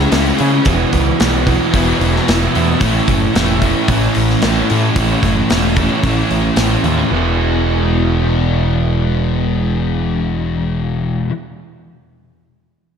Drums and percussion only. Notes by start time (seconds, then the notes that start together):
0.12 snare, open hi-hat
0.39 open hi-hat
0.65 kick, open hi-hat
0.93 kick, open hi-hat
1.20 snare, open hi-hat
1.47 kick, open hi-hat
1.74 kick, open hi-hat
2.01 open hi-hat
2.16 snare
2.28 snare, open hi-hat
2.55 open hi-hat
2.81 kick, open hi-hat
3.08 kick, open hi-hat
3.35 snare, open hi-hat
3.62 kick, open hi-hat
3.88 kick, open hi-hat
4.15 open hi-hat
4.30 snare
4.42 snare, open hi-hat
4.70 open hi-hat
4.96 kick, open hi-hat
5.23 kick, open hi-hat
5.50 snare, open hi-hat
5.76 kick, open hi-hat
6.04 kick, open hi-hat
6.31 open hi-hat
6.56 snare, open hi-hat
6.84 open hi-hat